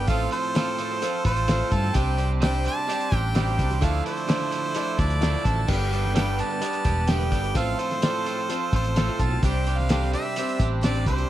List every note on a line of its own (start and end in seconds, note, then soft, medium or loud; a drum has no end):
0.00 0.08 G3 soft
0.00 0.10 G5 loud
0.07 0.26 A1 loud
0.07 0.55 A2 medium
0.07 0.55 F3 medium
0.07 0.31 A3 medium
0.07 0.40 C4 medium
0.07 1.94 C4 medium
0.07 0.32 C4 medium
0.07 0.40 F4 medium
0.07 1.94 F4 medium
0.07 0.33 F4 medium
0.07 1.93 A4 medium
0.07 0.40 A4 medium
0.07 0.33 A4 medium
0.07 1.93 C5 medium
0.07 0.41 C5 medium
0.07 0.31 F5 loud
0.07 kick loud
0.07 closed hi-hat loud
0.31 0.54 A3 medium
0.31 0.55 C4 medium
0.31 0.56 F4 medium
0.31 0.56 A4 medium
0.31 1.22 C5 loud
0.31 closed hi-hat medium
0.43 closed hi-hat soft
0.54 1.02 A2 loud
0.54 1.01 F3 loud
0.54 0.78 A3 medium
0.54 0.87 C4 medium
0.54 0.79 C4 medium
0.54 0.87 F4 medium
0.54 0.80 F4 medium
0.54 0.87 A4 medium
0.54 0.80 A4 medium
0.54 0.87 B5 medium
0.54 snare loud
0.54 closed hi-hat loud
0.78 0.91 A3 medium
0.78 0.91 C4 medium
0.78 0.91 F4 medium
0.78 1.03 A4 medium
0.78 closed hi-hat medium
0.82 0.90 A4 medium
0.91 1.26 C4 medium
0.91 1.26 F4 medium
0.91 1.26 A4 medium
1.02 1.47 F3 medium
1.02 1.34 C4 medium
1.02 1.25 C4 medium
1.02 1.34 F4 medium
1.02 1.24 F4 medium
1.02 1.34 A4 medium
1.02 1.23 A4 medium
1.02 1.34 C5 medium
1.02 closed hi-hat loud
1.25 1.61 A1 loud
1.25 1.47 A3 medium
1.25 1.48 C4 medium
1.25 1.48 F4 medium
1.25 1.50 A4 medium
1.25 1.75 C5 loud
1.25 kick loud
1.25 closed hi-hat medium
1.37 closed hi-hat soft
1.48 1.93 A2 medium
1.48 1.94 F3 loud
1.48 1.60 A3 medium
1.48 1.81 C4 medium
1.48 1.61 C4 medium
1.48 1.81 F4 medium
1.48 1.60 F4 medium
1.48 1.81 A4 medium
1.48 1.58 A4 medium
1.48 1.81 C5 medium
1.48 snare loud
1.48 closed hi-hat loud
1.59 1.71 C4 medium
1.59 1.72 F4 medium
1.59 1.72 A4 medium
1.71 1.90 G2 loud
1.71 1.83 A3 medium
1.71 1.84 C4 medium
1.71 1.83 F4 medium
1.71 1.81 A4 medium
1.71 1.97 A5 loud
1.71 kick medium
1.71 closed hi-hat medium
1.82 1.94 C4 soft
1.82 1.95 F4 soft
1.82 1.95 A4 medium
1.82 snare soft
1.94 2.67 C2 loud
1.94 2.18 C3 medium
1.94 2.17 G3 medium
1.94 2.19 C4 medium
1.94 3.80 D4 medium
1.94 2.27 D4 medium
1.94 2.19 D4 medium
1.94 3.80 G4 medium
1.94 2.27 G4 medium
1.94 2.19 G4 medium
1.94 3.80 C5 medium
1.94 2.27 C5 medium
1.94 3.80 D5 medium
1.94 2.28 D5 medium
1.94 2.30 G5 loud
1.94 kick loud
1.94 closed hi-hat loud
2.18 2.42 G3 medium
2.18 2.43 C4 medium
2.18 2.43 D4 medium
2.18 2.43 G4 medium
2.18 closed hi-hat medium
2.42 2.66 C3 medium
2.42 2.64 G3 medium
2.42 2.65 C4 medium
2.42 2.74 D4 medium
2.42 2.66 D4 medium
2.42 2.74 G4 medium
2.42 2.67 G4 loud
2.42 2.74 C5 medium
2.42 2.75 D5 medium
2.42 2.65 G5 loud
2.42 snare loud
2.42 closed hi-hat loud
2.65 2.77 G3 medium
2.65 2.78 C4 medium
2.65 2.77 D4 medium
2.65 2.76 G4 medium
2.65 3.16 A5 loud
2.65 closed hi-hat medium
2.77 3.12 C4 medium
2.77 3.13 D4 medium
2.77 3.12 G4 medium
2.87 3.34 G3 medium
2.87 3.12 C4 medium
2.87 3.21 D4 medium
2.87 3.12 D4 medium
2.87 3.21 G4 medium
2.87 3.10 G4 medium
2.87 3.21 C5 medium
2.87 3.21 D5 medium
2.87 closed hi-hat loud
3.01 closed hi-hat medium
3.12 3.59 A1 medium
3.12 3.35 G3 medium
3.12 3.36 C4 medium
3.12 3.36 D4 medium
3.12 3.37 G4 medium
3.12 kick medium
3.12 closed hi-hat medium
3.16 3.37 G5 loud
3.34 3.47 C3 medium
3.34 3.48 G3 medium
3.34 3.48 C4 medium
3.34 3.67 D4 medium
3.34 3.48 D4 medium
3.34 3.68 G4 medium
3.34 3.46 G4 medium
3.34 3.67 C5 medium
3.34 3.68 D5 medium
3.34 3.86 G5 loud
3.34 snare loud
3.34 closed hi-hat loud
3.47 3.58 C4 soft
3.47 3.59 D4 soft
3.47 3.59 G4 medium
3.47 closed hi-hat soft
3.58 3.82 C2 loud
3.58 3.71 G3 medium
3.58 3.71 C4 medium
3.58 3.71 D4 medium
3.58 3.69 G4 medium
3.58 kick loud
3.58 closed hi-hat medium
3.70 3.82 C4 soft
3.70 3.81 D4 soft
3.70 3.82 G4 medium
3.70 snare soft
3.70 closed hi-hat soft
3.81 4.00 D2 loud
3.81 4.05 D3 medium
3.81 4.04 F3 medium
3.81 4.05 A3 medium
3.81 4.14 D4 medium
3.81 4.05 D4 medium
3.81 4.14 E4 medium
3.81 5.67 E4 medium
3.81 4.05 E4 medium
3.81 4.14 A4 medium
3.81 5.67 A4 medium
3.81 4.06 A4 medium
3.81 4.14 D5 medium
3.81 5.67 D5 medium
3.81 4.06 F5 loud
3.81 kick loud
3.81 closed hi-hat loud
4.05 4.28 F3 medium
4.05 4.27 A3 medium
4.05 4.28 D4 medium
4.05 4.28 E4 medium
4.05 4.29 A4 medium
4.05 5.01 C5 loud
4.05 closed hi-hat medium
4.17 closed hi-hat soft
4.28 4.52 D3 medium
4.28 4.50 F3 medium
4.28 4.52 A3 medium
4.28 4.61 D4 medium
4.28 4.51 D4 medium
4.28 4.61 E4 medium
4.28 4.53 E4 medium
4.28 4.61 A4 medium
4.28 4.53 A4 medium
4.28 4.61 D5 medium
4.28 snare loud
4.28 closed hi-hat loud
4.42 snare soft
4.51 4.64 F3 medium
4.51 4.74 A3 medium
4.51 4.64 D4 medium
4.51 4.63 E4 medium
4.51 4.62 A4 medium
4.51 closed hi-hat medium
4.63 4.97 D4 medium
4.63 4.99 E4 medium
4.63 4.99 A4 medium
4.74 5.21 F3 medium
4.74 4.99 A3 medium
4.74 5.08 D4 medium
4.74 4.98 D4 medium
4.74 5.08 E4 medium
4.74 4.97 E4 medium
4.74 5.08 A4 medium
4.74 5.08 D5 medium
4.74 closed hi-hat loud
4.98 5.35 D2 medium
4.98 5.21 F3 medium
4.98 5.21 A3 medium
4.98 5.21 D4 medium
4.98 5.21 E4 medium
4.98 5.22 A4 medium
4.98 5.48 D5 loud
4.98 kick medium
4.98 closed hi-hat medium
5.11 closed hi-hat soft
5.20 5.33 D3 medium
5.20 5.34 F3 medium
5.20 5.45 A3 medium
5.20 5.54 D4 medium
5.20 5.34 D4 medium
5.20 5.53 E4 medium
5.20 5.33 E4 medium
5.20 5.54 A4 medium
5.20 5.31 A4 medium
5.20 5.54 D5 medium
5.20 snare loud
5.20 closed hi-hat loud
5.33 5.44 D4 soft
5.33 5.45 E4 medium
5.33 5.45 A4 medium
5.44 5.63 A1 medium
5.44 5.57 F3 medium
5.44 5.68 A3 medium
5.44 5.57 D4 medium
5.44 5.56 E4 medium
5.44 5.55 A4 medium
5.44 5.70 A5 loud
5.44 kick medium
5.44 closed hi-hat medium
5.56 5.68 D4 soft
5.56 5.69 E4 soft
5.56 5.69 A4 medium
5.67 6.40 G1 loud
5.67 5.92 G2 medium
5.67 5.92 D3 medium
5.67 5.91 G3 medium
5.67 5.92 B3 medium
5.67 6.00 D4 medium
5.67 5.93 D4 medium
5.67 7.55 D4 medium
5.67 6.01 G4 medium
5.67 5.90 G4 medium
5.67 6.01 B4 medium
5.67 5.93 B4 medium
5.67 7.55 B4 medium
5.67 6.01 D5 medium
5.67 7.55 D5 medium
5.67 6.15 G5 loud
5.67 kick loud
5.67 crash loud
5.71 7.55 G4 medium
5.91 6.15 G3 medium
5.91 6.15 B3 medium
5.91 6.16 D4 medium
5.91 6.14 G4 medium
5.91 6.17 B4 medium
5.91 closed hi-hat medium
6.05 snare soft
6.14 6.39 G2 medium
6.14 6.39 D3 medium
6.14 6.37 G3 medium
6.14 6.39 B3 medium
6.14 6.47 D4 medium
6.14 6.40 D4 medium
6.14 6.47 G4 medium
6.14 6.36 G4 loud
6.14 6.47 B4 medium
6.14 6.40 B4 loud
6.14 6.48 F5 medium
6.14 6.42 G5 loud
6.14 snare loud
6.14 closed hi-hat loud
6.37 6.51 G3 medium
6.37 6.51 B3 medium
6.37 6.50 D4 medium
6.37 6.62 G4 medium
6.37 7.11 A5 loud
6.37 closed hi-hat medium
6.42 6.49 B4 medium
6.50 6.84 G3 soft
6.50 6.86 B3 medium
6.50 6.86 D4 medium
6.50 6.85 B4 medium
6.60 6.85 G3 medium
6.60 6.85 B3 medium
6.60 6.93 D4 medium
6.60 6.84 D4 medium
6.60 6.94 G4 medium
6.60 6.84 G4 medium
6.60 6.94 B4 medium
6.60 6.94 D5 medium
6.60 closed hi-hat loud
6.73 closed hi-hat medium
6.85 7.32 E1 loud
6.85 7.08 G3 medium
6.85 7.09 B3 medium
6.85 7.10 D4 medium
6.85 7.09 G4 medium
6.85 7.10 B4 medium
6.85 kick medium
6.85 closed hi-hat medium
7.07 7.21 G2 medium
7.07 7.21 D3 medium
7.07 7.21 G3 medium
7.07 7.20 B3 medium
7.07 7.41 D4 medium
7.07 7.19 D4 medium
7.07 7.41 G4 medium
7.07 7.31 G4 loud
7.07 7.41 B4 medium
7.07 7.18 B4 medium
7.07 7.41 E5 medium
7.07 7.59 G5 loud
7.07 snare loud
7.07 closed hi-hat loud
7.19 7.29 G3 soft
7.19 7.31 B3 medium
7.19 7.31 D4 medium
7.19 7.32 B4 medium
7.19 closed hi-hat soft
7.30 7.55 G1 medium
7.30 7.43 G3 medium
7.30 7.43 B3 medium
7.30 7.42 D4 medium
7.30 7.54 G4 medium
7.30 7.41 B4 medium
7.30 kick loud
7.30 closed hi-hat medium
7.42 7.54 G3 soft
7.42 7.55 B3 soft
7.42 7.55 D4 medium
7.42 7.55 B4 medium
7.42 closed hi-hat soft
7.54 7.74 A1 loud
7.54 8.02 A2 medium
7.54 8.02 F3 loud
7.54 7.76 A3 medium
7.54 7.87 C4 medium
7.54 7.78 C4 medium
7.54 9.41 C4 medium
7.54 7.87 F4 medium
7.54 9.41 F4 medium
7.54 7.79 F4 medium
7.54 7.87 A4 medium
7.54 9.41 A4 medium
7.54 7.80 A4 medium
7.54 7.87 C5 medium
7.54 9.41 C5 medium
7.54 7.81 F5 loud
7.54 kick loud
7.54 closed hi-hat loud
7.78 8.01 A3 medium
7.78 8.02 C4 medium
7.78 8.02 F4 medium
7.78 8.03 A4 medium
7.78 8.73 C5 loud
7.78 closed hi-hat medium
7.90 snare soft
7.90 closed hi-hat soft
8.02 8.49 A2 medium
8.02 8.48 F3 medium
8.02 8.24 A3 medium
8.02 8.34 C4 medium
8.02 8.25 C4 medium
8.02 8.34 F4 medium
8.02 8.26 F4 medium
8.02 8.35 A4 medium
8.02 8.27 A4 medium
8.02 8.35 D5 medium
8.02 snare loud
8.02 closed hi-hat loud
8.25 8.37 A3 medium
8.25 8.38 C4 medium
8.25 8.37 F4 medium
8.25 8.35 A4 medium
8.25 closed hi-hat medium
8.37 8.71 C4 medium
8.37 8.72 F4 medium
8.37 8.72 A4 medium
8.48 8.96 F3 medium
8.48 8.81 C4 medium
8.48 8.74 C4 medium
8.48 8.81 F4 medium
8.48 8.73 F4 medium
8.48 8.81 A4 medium
8.48 8.72 A4 medium
8.48 8.81 C5 medium
8.48 closed hi-hat loud
8.71 9.09 A1 medium
8.71 8.94 A3 medium
8.71 8.94 C4 medium
8.71 8.95 F4 medium
8.71 8.96 A4 medium
8.71 kick medium
8.71 closed hi-hat medium
8.75 9.23 C5 loud
8.84 closed hi-hat soft
8.95 9.42 A2 medium
8.95 9.42 F3 medium
8.95 9.07 A3 medium
8.95 9.08 C4 medium
8.95 9.28 C4 medium
8.95 9.07 F4 medium
8.95 9.28 F4 medium
8.95 9.28 A4 medium
8.95 9.05 A4 medium
8.95 9.28 C5 medium
8.95 snare loud
8.95 closed hi-hat loud
9.06 9.18 C4 soft
9.06 9.20 F4 medium
9.06 9.18 A4 medium
9.18 9.37 B1 loud
9.18 9.30 A3 medium
9.18 9.31 C4 medium
9.18 9.31 F4 medium
9.18 9.29 A4 medium
9.18 9.43 A5 loud
9.18 kick medium
9.18 closed hi-hat medium
9.30 9.42 C4 soft
9.30 9.43 F4 medium
9.30 9.42 A4 medium
9.42 10.14 C2 loud
9.42 9.66 C3 medium
9.42 9.63 G3 medium
9.42 9.64 C4 medium
9.42 9.75 C4 medium
9.42 11.29 C4 medium
9.42 9.65 D4 medium
9.42 9.75 D4 medium
9.42 11.29 D4 medium
9.42 9.75 G4 medium
9.42 9.66 G4 medium
9.42 11.28 G4 medium
9.42 9.75 C5 medium
9.42 11.29 C5 medium
9.42 9.79 G5 loud
9.42 kick loud
9.42 closed hi-hat loud
9.64 9.89 G3 medium
9.64 9.89 C4 medium
9.64 9.90 D4 medium
9.64 9.90 G4 medium
9.64 closed hi-hat medium
9.78 10.13 F5 loud
9.78 snare soft
9.89 10.12 C3 medium
9.89 10.10 G3 medium
9.89 10.21 C4 medium
9.89 10.11 C4 medium
9.89 10.22 D4 medium
9.89 10.12 D4 medium
9.89 10.21 G4 medium
9.89 10.14 G4 medium
9.89 10.22 A4 medium
9.89 snare loud
9.89 closed hi-hat loud
10.03 snare soft
10.11 10.24 G3 medium
10.11 10.24 C4 medium
10.11 10.24 D4 medium
10.11 10.22 G4 medium
10.11 10.67 E5 loud
10.11 closed hi-hat medium
10.23 10.58 C4 soft
10.23 10.59 D4 medium
10.23 10.59 G4 medium
10.36 10.84 G3 medium
10.36 10.68 C4 medium
10.36 10.62 C4 medium
10.36 10.69 D4 medium
10.36 10.60 D4 medium
10.36 10.69 G4 medium
10.36 10.59 G4 medium
10.36 10.69 C5 medium
10.36 closed hi-hat loud
10.49 closed hi-hat medium
10.58 11.06 A1 loud
10.58 10.81 G3 medium
10.58 10.81 C4 medium
10.58 10.82 D4 medium
10.58 10.83 G4 medium
10.58 kick medium
10.58 closed hi-hat medium
10.81 10.94 C3 medium
10.81 10.94 G3 medium
10.81 10.94 C4 medium
10.81 11.15 C4 medium
10.81 11.15 D4 medium
10.81 10.94 D4 medium
10.81 11.15 G4 medium
10.81 10.92 G4 medium
10.81 11.15 C5 medium
10.81 11.05 D5 medium
10.81 snare loud
10.81 closed hi-hat loud
10.93 11.05 C4 soft
10.93 11.07 D4 soft
10.93 11.06 G4 medium
10.93 closed hi-hat medium
11.06 11.24 C2 loud
11.06 11.18 G3 medium
11.06 11.18 C4 medium
11.06 11.19 D4 medium
11.06 11.17 G4 medium
11.06 11.30 C5 medium
11.06 kick medium
11.06 closed hi-hat medium
11.18 11.30 C4 soft
11.18 11.30 D4 medium
11.18 11.29 G4 medium
11.18 closed hi-hat soft